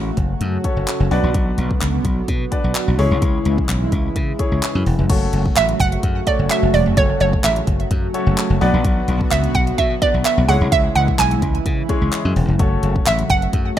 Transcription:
Already playing: C#3 F#3 A3 F#4
0.17 F#1, kick, closed hi-hat
0.41 F#2, closed hi-hat
0.64 C#4 F#4 A4 C#5, kick, closed hi-hat
0.77 F#1
0.87 clap, closed hi-hat
1.00 F#1
1.11 B1 D3 B3 D4 F#4 B4 D5, open hi-hat
1.23 A#1
1.34 B1, kick, closed hi-hat
1.58 B1, closed hi-hat
1.71 kick
1.81 C#2, clap, closed hi-hat
2.05 B1, kick, closed hi-hat
2.28 B2, kick, closed hi-hat
2.51 D4 F#4 B4 D5, kick, closed hi-hat
2.64 B1
2.75 clap, closed hi-hat
2.88 B1
2.98 C#2 C#3 E3 G#3 C#4 E4 G#4 C#5, open hi-hat
3.11 C2
3.22 C#2, kick, closed hi-hat
3.45 C#2, closed hi-hat
3.58 kick
3.69 B1, clap, closed hi-hat
3.92 C#2, kick, closed hi-hat
4.16 C#3, kick, closed hi-hat
4.39 C#4 E4 G#4 C#5, kick, closed hi-hat
4.52 C#2
4.62 clap, closed hi-hat
4.75 F#2
4.86 E1, open hi-hat
4.99 F1
5.09 F#1 C#3 F#3 A3 C#4 F#4 A4 C#5, kick, closed hi-hat, crash
5.33 F#1, closed hi-hat
5.46 kick
5.56 A1 E5, clap, closed hi-hat
5.69 closed hi-hat
5.80 F#1 F#5, kick, closed hi-hat
5.92 closed hi-hat
6.03 F#2, kick, closed hi-hat
6.27 A3 C#4 F#4 A4 C#5 D5, kick, closed hi-hat
6.39 F#1
6.50 E5, clap, closed hi-hat
6.63 F#1
6.74 E1 D5, open hi-hat
6.86 F1
6.97 F#1 A3 C#4 F#4 A4 C#5, kick, closed hi-hat
7.20 F#1 C#5, closed hi-hat
7.33 kick
7.44 A1 E5, clap, closed hi-hat
7.56 closed hi-hat
7.67 F#1, kick, closed hi-hat
7.80 closed hi-hat
7.91 F#2, kick, closed hi-hat
8.14 A3 C#4 F#4 A4 C#5, closed hi-hat
8.27 F#1
8.37 clap, closed hi-hat
8.50 F#1
8.61 B1 D3 B3 D4 F#4 B4 D5, open hi-hat
8.74 A#1
8.85 B1, kick, closed hi-hat
9.08 B1, closed hi-hat
9.21 kick
9.31 C#2 E5, clap, closed hi-hat
9.44 closed hi-hat
9.55 B1 F#5, kick, closed hi-hat
9.67 closed hi-hat
9.78 B2 E5, kick, closed hi-hat
10.02 B3 D4 F#4 B4 D5, kick, closed hi-hat
10.14 B1
10.25 E5, clap, closed hi-hat
10.38 B1
10.48 C#2 C#3 E3 G#3 C#4 E4 G#4 C#5 F#5, open hi-hat
10.61 C2
10.72 C#2 E5, kick, closed hi-hat
10.95 C#2 F#5, closed hi-hat
11.08 kick
11.19 B1 G#5, clap, closed hi-hat
11.31 closed hi-hat
11.42 C#2, kick, closed hi-hat
11.55 closed hi-hat
11.66 C#3, kick, closed hi-hat
11.89 G#3 C#4 E4 G#4 C#5, kick, closed hi-hat
12.01 C#2
12.12 clap, closed hi-hat
12.25 F#2
12.36 E1, open hi-hat
12.48 F1
12.59 F#1 F#3 A3 C#4 F#4 A4 C#5, kick, closed hi-hat
12.83 F#1, closed hi-hat
12.96 kick
13.06 A1 E5, clap, closed hi-hat
13.19 closed hi-hat
13.30 F#1 F#5, kick, closed hi-hat
13.42 closed hi-hat
13.53 F#2, kick, closed hi-hat

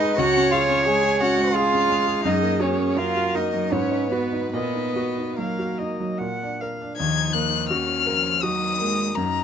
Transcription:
Already playing: G#2 G#3 D#4 B4 D#5
0.00 G#4
0.17 C#2 F#4 C#5 F#5
0.36 C#4
0.51 F4 G#4 F5
0.69 C#4
0.85 G#3 G#4 G#5
1.03 G#4
1.20 C#4 F#4 F#5
1.37 G#3
1.54 F4 G#4 F5
1.72 C#4
1.90 G#3
2.07 G#4
2.25 F#2 D#4 D#5
2.43 A#3
2.60 C#4 F#4 C#5
2.78 A#3
2.96 F#3 F4 A#4 F5
3.16 F#4
3.34 A#3 D#4 D#5
3.53 F#3
3.72 G#2 C#4 B4 C#5
3.91 D#4
4.10 B3 F#4 B4
4.32 D#4
4.52 A#2 B3 B4 D#5
4.75 D#4
4.96 F#4
5.18 D#4
5.36 F#3 A#3 A#4 F5
5.59 F#4
5.78 D#4 D#5
6.00 F#3
6.18 A#2 F#5
6.42 D4
6.61 A#4 F5
6.81 D4
6.97 D#2 F3 D#4 G#6
7.33 A#3 F#6
7.69 D#3 C#4 F#4 F6
8.07 F3 A#4
8.43 F#3 D#4 F#4 D#6
8.81 G#3 A#3
9.15 F#2 F#3 D#4 A#5

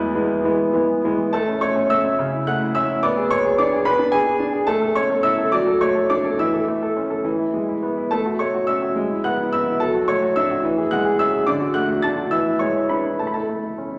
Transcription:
Already playing: E2 E3 G#3 B3 E4 B4
0.14 E3 G#3 B3
0.44 E3 G#3 B3
0.73 E3 G#3 B3
1.04 E3 G#3 B3
1.33 A3 A4 A5
1.48 C#4
1.61 A3 C#5 C#6
1.76 C#4
1.90 A3 E5 E6
2.05 C#4
2.19 C#3
2.33 E4
2.47 A3 F#5 F#6
2.61 E4
2.75 C#4 E5 E6
2.90 E4
3.03 B3 D5 D6
3.17 G#4
3.31 B3 C#5 C#6
3.45 G#4
3.58 D4 D5 D6
3.73 G#4
3.85 B3 B4 B5
3.99 D4
4.12 B3 G#4 G#5
4.26 G#4
4.40 D4
4.53 G#4
4.67 A3 A4 A5
4.82 A4
4.95 C#4 C#5 C#6
5.10 A4
5.23 E4 E5 E6
5.38 A4
5.52 F#3 D5 D6
5.67 A4
5.81 A3 C#5 C#6
5.95 A4
6.10 D4 D5 D6
6.24 A4
6.39 E3 E5 E6
6.53 A4
6.68 A3
6.83 A4
6.96 C#4
7.10 A4
7.24 E3
7.39 E4
7.54 G#3
7.69 E4
7.83 B3
7.97 E4
8.11 A3 A4 A5
8.26 F#4
8.39 A3 C#5 C#6
8.54 F#4
8.67 C#4 E5 E6
8.82 F#4
8.96 G#3
9.10 E4
9.24 B3 F#5 F#6
9.39 E4
9.53 B3 E5 E6
9.66 E4
9.80 F#3 A4 A5
9.94 F#4
10.08 A3 C#5 C#6
10.22 F#4
10.36 D4 E5 E6
10.51 F#4
10.64 E3
10.78 G#4
10.91 G#3 F#5 F#6
11.05 G#4
11.19 C#4 E5 E6
11.33 G#4
11.47 D3 D5 D6
11.60 F#4
11.74 A3 F#5 F#6
11.89 F#4
12.02 D4 A5 A6
12.17 F#4
12.31 E3 E5 E6
12.46 E4
12.59 G#3 C#5 C#6
12.74 E4
12.89 D4 B4 B5
13.04 E4
13.19 A3 A5
13.27 B5
13.34 E4 A4 A5
13.49 A3
13.64 E4
13.78 C#4
13.93 E4

